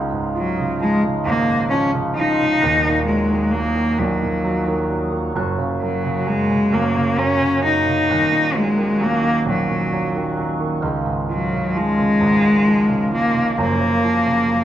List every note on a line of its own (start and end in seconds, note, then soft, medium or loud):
0.00 2.59 C#2 medium
0.00 2.58 C#3 medium
0.00 2.60 G#3 medium
0.00 2.58 D#4 medium
0.00 2.60 F4 medium
0.12 1.24 G#2 medium
0.35 0.78 F#3 medium
0.35 2.13 F4 medium
0.58 1.02 C#3 medium
0.80 1.70 F3 medium
0.80 1.02 G#3 medium
1.04 1.93 C#3 medium
1.26 2.58 G#1 medium
1.26 1.48 G#2 medium
1.26 1.68 A#3 loud
1.50 2.59 G#2 medium
1.70 2.16 F3 medium
1.70 1.90 C#4 medium
1.94 2.39 C#3 medium
2.15 2.61 F3 medium
2.15 3.03 D#4 loud
2.40 2.62 C#3 soft
2.62 5.32 D#1 medium
2.62 5.33 D#2 medium
2.62 5.32 D#2 medium
2.62 5.33 A#2 medium
2.62 5.33 A#3 medium
2.62 5.33 D#4 medium
2.62 5.33 F#4 medium
2.87 3.98 A#2 medium
3.06 3.52 F#3 medium
3.06 3.53 G#3 medium
3.31 3.74 D#3 medium
3.51 4.43 F#3 medium
3.51 4.00 A#3 medium
3.76 4.66 D#3 medium
3.98 5.32 A#1 medium
3.98 4.20 A#2 medium
3.98 5.01 F#3 medium
4.21 5.32 A#2 medium
4.44 4.88 F#3 medium
4.67 5.10 D#3 medium
4.90 5.34 F#3 medium
5.12 5.34 D#3 medium
5.35 6.71 F#1 medium
5.35 5.80 F#2 medium
5.35 8.07 A#2 medium
5.35 8.07 F#3 medium
5.35 8.07 C#4 medium
5.35 8.07 F#4 medium
5.58 6.02 C#3 medium
5.82 6.25 F#2 medium
5.82 6.30 F#3 medium
6.04 6.49 C#3 medium
6.27 6.71 F#2 medium
6.27 6.75 G#3 loud
6.51 6.94 C#3 soft
6.73 8.05 F#1 medium
6.73 7.17 F#2 medium
6.73 7.21 A#3 medium
6.95 7.39 C#3 medium
7.18 7.62 F#2 medium
7.18 7.64 C#4 loud
7.41 7.84 C#3 medium
7.64 8.08 F#2 medium
7.64 8.58 D#4 loud
7.86 8.08 C#3 medium
8.09 10.79 D#1 medium
8.09 10.79 D#2 medium
8.09 10.81 D#3 medium
8.09 10.81 A#3 medium
8.09 10.81 C#4 medium
8.09 10.81 F#4 medium
8.32 9.45 A#2 soft
8.54 8.99 F#3 medium
8.54 9.05 G#3 medium
8.78 9.21 D#3 medium
9.00 9.92 F#3 medium
9.00 9.48 A#3 loud
9.22 10.14 D#3 medium
9.46 10.79 A#1 medium
9.46 9.67 A#2 medium
9.46 10.46 F#3 medium
9.69 10.79 A#2 medium
9.93 10.36 F#3 medium
10.15 10.58 D#3 medium
10.37 10.82 F#3 medium
10.60 10.82 D#3 medium
10.82 13.52 C#2 medium
10.82 13.54 D#3 medium
10.82 13.54 G#3 medium
10.82 13.54 C#4 medium
10.82 14.64 F4 medium
11.06 12.19 G#2 medium
11.29 11.79 F#3 medium
11.29 13.07 F4 medium
11.53 11.97 C#3 medium
11.75 12.65 F3 medium
11.75 13.13 G#3 loud
11.99 12.87 C#3 soft
12.21 13.53 G#1 medium
12.21 12.41 G#2 medium
12.43 13.53 G#2 medium
12.67 13.10 F3 medium
12.89 13.33 C#3 medium
13.11 13.55 F3 medium
13.11 13.55 A#3 medium
13.34 13.56 C#3 medium
13.57 14.64 F#1 medium
13.57 14.47 F#2 medium
13.57 14.64 C#3 medium
13.57 14.64 F3 medium
13.57 14.64 A#3 medium
13.57 14.64 A#3 loud
13.81 14.25 C#3 medium
14.04 14.64 F3 medium
14.26 14.64 C#3 medium
14.48 14.64 F#2 medium